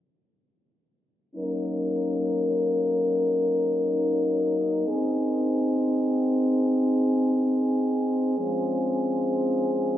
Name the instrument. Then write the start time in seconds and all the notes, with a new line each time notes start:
french horn section
1.35 F#3 A#3 C#4 D#4 A#4
4.86 C4 G#4
8.36 F3 G#3 C4 C#4